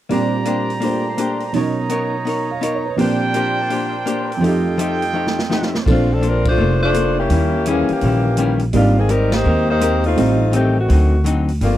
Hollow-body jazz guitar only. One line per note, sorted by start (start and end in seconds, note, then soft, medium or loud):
0.09 0.34 A#3 soft
0.09 0.35 D4 soft
0.09 0.36 G4 soft
0.09 0.36 C5 soft
0.45 0.70 A#3 soft
0.45 0.71 D4 soft
0.45 0.71 G4 medium
0.45 0.72 C5 soft
0.80 1.06 A#3 soft
0.80 1.07 D4 soft
0.80 1.07 G4 soft
0.80 1.08 C5 soft
1.18 1.43 A#3 soft
1.18 1.43 D4 medium
1.18 1.44 G4 medium
1.18 1.44 C5 medium
1.54 1.79 B3 soft
1.54 1.79 D#4 soft
1.54 1.80 A#4 soft
1.54 1.80 C#5 soft
1.90 2.15 B3 medium
1.90 2.15 D#4 medium
1.90 2.15 A#4 medium
1.90 2.16 C#5 medium
2.25 2.50 B3 soft
2.25 2.51 D#4 soft
2.25 2.51 A#4 soft
2.25 2.52 C#5 medium
2.61 2.86 B3 soft
2.61 2.87 D#4 medium
2.61 2.87 A#4 medium
2.61 2.88 C#5 medium
2.98 3.23 A#3 soft
2.98 3.23 D4 soft
2.98 3.24 G4 soft
2.98 3.24 C5 soft
3.35 3.59 A#3 medium
3.35 3.59 D4 medium
3.35 3.60 G4 medium
3.35 3.60 C5 medium
3.70 3.95 A#3 soft
3.70 3.95 D4 soft
3.70 3.96 G4 soft
3.70 3.97 C5 soft
4.06 4.31 A#3 medium
4.06 4.31 D4 medium
4.06 4.32 G4 medium
4.06 4.32 C5 medium
4.41 4.66 F3 soft
4.41 4.67 A3 soft
4.41 4.67 D#4 soft
4.41 4.68 G4 soft
4.78 5.02 F3 medium
4.78 5.03 A3 medium
4.78 5.04 D#4 medium
4.78 5.04 G4 medium
5.13 5.38 F3 soft
5.13 5.39 A3 soft
5.13 5.39 D#4 soft
5.13 5.40 G4 soft
5.49 5.74 F3 soft
5.49 5.75 A3 medium
5.49 5.75 D#4 medium
5.49 5.76 G4 medium
5.85 6.10 A#3 soft
5.85 6.11 D4 soft
5.85 6.12 A4 soft
5.85 6.12 C5 soft
6.21 6.46 A#3 soft
6.21 6.47 D4 medium
6.21 6.47 A4 soft
6.21 6.48 C5 medium
6.58 6.82 A#3 soft
6.58 6.83 D4 soft
6.58 6.84 A4 soft
6.58 6.84 C5 soft
6.93 7.18 A#3 soft
6.93 7.19 D4 soft
6.93 7.19 A4 medium
6.93 7.19 C5 medium
7.29 7.54 D#3 soft
7.29 7.55 G3 soft
7.29 7.56 C#4 soft
7.29 7.56 E4 soft
7.66 7.91 D#3 soft
7.66 7.91 G3 medium
7.66 7.92 C#4 medium
7.66 7.92 E4 medium
8.02 8.27 D#3 soft
8.02 8.27 G3 soft
8.02 8.28 C#4 soft
8.02 8.28 E4 soft
8.38 8.62 D#3 medium
8.38 8.63 G3 medium
8.38 8.63 C#4 medium
8.38 8.63 E4 medium
8.73 8.98 G#3 soft
8.73 8.98 C4 soft
8.73 8.99 G4 soft
8.73 8.99 A#4 soft
9.09 9.34 G#3 medium
9.09 9.35 C4 medium
9.09 9.35 G4 medium
9.09 9.35 A#4 medium
9.44 9.69 G#3 soft
9.44 9.70 C4 soft
9.44 9.71 G4 soft
9.44 9.71 A#4 soft
9.80 10.06 G#3 soft
9.80 10.06 C4 soft
9.80 10.06 G4 soft
9.80 10.07 A#4 medium
10.16 10.41 A2 soft
10.16 10.42 G3 soft
10.16 10.43 C4 soft
10.16 10.43 D#4 soft
10.52 10.77 A2 soft
10.52 10.78 G3 soft
10.52 10.78 C4 medium
10.52 10.78 D#4 medium
10.88 11.13 D3 soft
10.88 11.14 F#3 soft
10.88 11.15 C4 soft
10.88 11.15 D#4 medium
11.24 11.49 D3 medium
11.24 11.50 F#3 medium
11.24 11.50 C4 medium
11.24 11.51 D#4 medium
11.61 11.78 G2 soft
11.61 11.78 F3 soft
11.61 11.78 A#3 soft
11.61 11.78 C4 soft